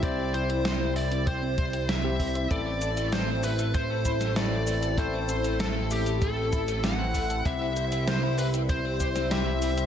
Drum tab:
HH |x-xxx-oxx-xxx-ox|x-xxx-oxx-xxx-ox|x-xxx-oxx-xxx-ox|x-xxx-oxx-xxx-ox|
SH |----------------|x-xxx-xxx-xxx-xx|x-xxx-xxx-xxx-xx|x-xxx-xxx-xxx-xx|
SD |----o-------o---|----o------oo---|----o-------o---|----o------oo---|
BD |o-------o-o---o-|o-------o-o-----|o-------o-o---o-|o-------o-o-----|